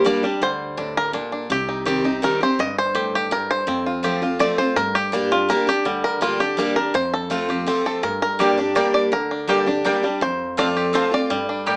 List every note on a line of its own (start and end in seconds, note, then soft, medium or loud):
0.00 0.23 G3 medium
0.00 0.20 D4 medium
0.04 0.23 G3 medium
0.04 0.23 A#3 loud
0.04 0.23 D4 medium
0.04 0.22 G4 loud
0.04 0.42 D5 medium
0.23 1.64 G3 medium
0.23 0.42 D4 medium
0.23 0.40 G4 medium
0.41 1.16 D2 medium
0.41 1.11 D3 medium
0.41 0.97 C5 medium
0.77 1.12 A2 medium
0.77 1.13 D4 medium
0.97 1.14 A#4 medium
1.13 1.48 A#2 medium
1.13 1.31 D4 medium
1.32 1.50 D4 medium
1.50 2.25 C2 loud
1.50 2.19 C3 medium
1.50 1.85 G4 medium
1.69 2.04 D#4 medium
1.85 2.04 D#3 medium
1.85 2.04 G3 medium
1.85 2.05 C4 loud
1.85 2.38 G4 medium
1.85 2.03 G4 loud
2.04 2.23 C4 medium
2.04 2.56 D#4 medium
2.04 2.22 G4 medium
2.22 2.40 D#3 loud
2.22 2.41 G3 loud
2.22 2.41 C4 medium
2.22 2.39 G4 loud
2.22 2.41 A#4 loud
2.41 2.59 C4 medium
2.41 2.58 G4 medium
2.41 2.59 C5 loud
2.59 3.34 G1 medium
2.59 3.28 G2 medium
2.59 2.78 D#5 loud
2.78 3.15 C5 loud
2.95 3.30 A2 medium
2.95 3.14 G4 medium
3.15 3.33 G4 medium
3.31 3.66 G2 medium
3.31 3.51 A#4 medium
3.51 3.84 C5 loud
3.67 4.36 F2 medium
3.67 4.42 F2 loud
3.67 4.19 C4 medium
3.86 4.22 F4 medium
4.03 4.21 F3 medium
4.03 4.22 A3 medium
4.03 4.22 C4 medium
4.03 4.21 F4 loud
4.03 4.55 G4 medium
4.22 4.40 C4 medium
4.22 4.39 F4 medium
4.22 4.40 F4 medium
4.39 4.58 F3 loud
4.39 4.58 A3 loud
4.39 4.58 C4 medium
4.39 4.57 F4 medium
4.39 4.58 D5 loud
4.58 4.77 C4 soft
4.58 4.76 F4 medium
4.58 4.77 C5 loud
4.76 5.51 G2 loud
4.76 5.46 G2 medium
4.76 4.96 A#4 loud
4.95 5.33 G4 medium
5.12 5.30 G3 medium
5.12 5.31 A#3 medium
5.12 5.64 D4 medium
5.12 5.31 D4 medium
5.12 5.30 G4 loud
5.31 5.49 D4 medium
5.31 5.48 F4 medium
5.31 5.48 G4 medium
5.49 5.67 G3 medium
5.49 5.67 A#3 medium
5.49 5.68 D4 loud
5.49 5.66 G4 loud
5.49 5.69 A#4 loud
5.67 5.86 D4 medium
5.67 5.84 G4 medium
5.67 6.06 G4 medium
5.85 6.10 D2 medium
5.85 6.54 D3 medium
5.85 6.37 G3 medium
6.04 6.21 A#4 loud
6.21 6.53 D2 medium
6.21 6.39 G3 medium
6.21 6.40 A#3 medium
6.21 6.40 D4 medium
6.21 6.39 F4 medium
6.21 6.38 G4 loud
6.40 6.58 D4 soft
6.40 6.57 G4 medium
6.40 6.78 G4 loud
6.57 6.89 D#2 medium
6.57 6.75 G3 loud
6.57 6.76 A#3 medium
6.57 6.94 D4 medium
6.57 6.76 D4 medium
6.57 6.75 G4 loud
6.76 6.94 D4 soft
6.76 6.93 G4 medium
6.76 6.95 A#4 loud
6.94 7.63 F2 medium
6.94 7.69 F2 loud
6.94 7.14 C5 loud
7.14 7.64 A4 medium
7.30 7.48 F3 medium
7.30 7.49 A3 medium
7.30 7.49 C4 loud
7.30 7.82 F4 medium
7.30 7.47 F4 loud
7.48 7.67 C4 medium
7.48 7.66 F4 medium
7.48 8.00 G4 medium
7.66 8.01 F3 medium
7.66 8.02 A3 medium
7.66 8.04 C4 medium
7.66 8.02 C4 loud
7.66 8.03 F4 medium
7.86 8.03 A4 medium
8.03 8.72 G2 medium
8.03 8.78 G2 medium
8.03 8.21 A#4 medium
8.22 8.78 A#4 medium
8.39 8.57 G3 medium
8.39 8.49 A#3 medium
8.39 8.58 A#3 medium
8.39 8.58 D4 medium
8.39 8.49 G4 medium
8.39 8.91 G4 medium
8.39 8.56 G4 loud
8.39 8.49 D5 loud
8.39 8.49 G5 medium
8.57 8.75 D4 medium
8.57 8.75 G4 medium
8.75 9.10 G3 medium
8.75 8.85 A#3 medium
8.75 9.11 A#3 loud
8.75 9.11 D4 loud
8.75 8.85 G4 medium
8.75 9.11 G4 loud
8.75 8.93 D5 loud
8.75 8.86 D5 medium
8.75 8.86 G5 loud
8.94 9.13 D5 medium
9.12 9.87 D2 medium
9.12 9.81 D3 medium
9.12 9.64 A#4 medium
9.31 9.66 D4 medium
9.47 9.66 G3 medium
9.47 9.58 A#3 medium
9.47 9.66 A#3 medium
9.47 9.67 D4 medium
9.47 9.58 G4 loud
9.47 10.00 G4 medium
9.47 9.65 G4 loud
9.47 9.58 D5 medium
9.47 9.58 G5 loud
9.66 9.84 D4 medium
9.66 9.85 D4 medium
9.66 9.84 G4 medium
9.85 10.03 G3 medium
9.85 9.94 A#3 loud
9.85 10.03 A#3 loud
9.85 10.22 D4 medium
9.85 10.03 D4 medium
9.85 9.95 G4 loud
9.85 10.02 G4 loud
9.85 9.95 D5 loud
9.85 9.95 G5 loud
10.03 10.22 G3 medium
10.03 10.22 D4 medium
10.03 10.21 G4 medium
10.21 10.96 F2 medium
10.21 10.91 F2 medium
10.21 10.56 C5 loud
10.57 10.92 F3 medium
10.57 10.93 A3 loud
10.57 10.67 C4 medium
10.57 10.93 C4 loud
10.57 10.67 F4 loud
10.57 10.93 F4 loud
10.57 10.67 C5 loud
10.57 10.92 D5 loud
10.57 10.67 A5 loud
10.77 11.27 G4 medium
10.93 11.11 F3 medium
10.93 11.12 A3 medium
10.93 11.03 C4 medium
10.93 11.12 C4 loud
10.93 11.03 F4 medium
10.93 11.10 F4 loud
10.93 11.04 C5 loud
10.93 11.13 C5 loud
10.93 11.04 A5 medium
11.11 11.30 C4 medium
11.11 11.29 F4 medium
11.11 11.47 D5 loud
11.30 11.76 G2 medium
11.30 11.76 G3 medium
11.49 11.76 D4 medium
11.66 11.76 A2 medium
11.66 11.76 A#3 medium
11.66 11.76 G4 loud
11.66 11.76 G4 medium
11.66 11.76 D5 loud
11.66 11.76 G5 loud